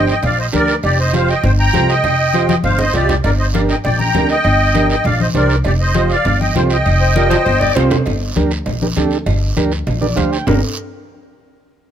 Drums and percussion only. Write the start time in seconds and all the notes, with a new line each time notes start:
0.07 short guiro
0.23 cowbell, low conga, long guiro
0.53 cowbell, high conga, short guiro
0.68 short guiro
0.83 cowbell, long guiro
1.13 cowbell, high conga, short guiro
1.29 short guiro
1.44 cowbell, low conga, long guiro
1.74 cowbell, high conga, low conga, low timbale, short guiro
1.89 short guiro
2.04 cowbell, low conga, long guiro
2.34 cowbell, high conga, short guiro
2.49 high conga, short guiro
2.64 cowbell, low conga, long guiro
2.79 low conga
2.94 cowbell, low conga, short guiro
3.09 low conga, short guiro
3.24 cowbell, low conga, long guiro
3.54 cowbell, high conga, short guiro
3.69 short guiro
3.84 cowbell, low conga, long guiro
3.99 high conga
4.14 cowbell, high conga, low conga, low timbale, short guiro
4.29 short guiro
4.44 cowbell, long guiro
4.74 cowbell, high conga, short guiro
4.90 short guiro
5.04 cowbell, low conga, long guiro
5.20 high conga
5.35 cowbell, high conga, short guiro
5.49 short guiro
5.64 cowbell, low conga, long guiro
5.94 cowbell, high conga, short guiro
6.10 short guiro
6.25 cowbell, low conga, long guiro
6.41 high conga
6.55 cowbell, high conga, low conga, low timbale, short guiro
6.70 short guiro
6.86 cowbell, long guiro
7.16 cowbell, high conga, short guiro
7.30 high conga, high timbale, short guiro
7.46 cowbell, low conga, long guiro
7.61 low conga
7.75 cowbell, low conga, low timbale, short guiro
7.91 low conga, low timbale, short guiro
8.06 cowbell, low conga, long guiro
8.36 cowbell, high conga, short guiro
8.51 short guiro
8.66 cowbell, low conga, long guiro
8.82 high conga
8.96 cowbell, high conga, low timbale, short guiro
9.11 short guiro
9.26 cowbell, low conga, long guiro
9.57 cowbell, high conga, short guiro
9.72 short guiro
9.87 cowbell, low conga, long guiro
10.02 high conga
10.17 cowbell, high conga, low conga, short guiro
10.33 short guiro
10.47 low conga, low timbale, long guiro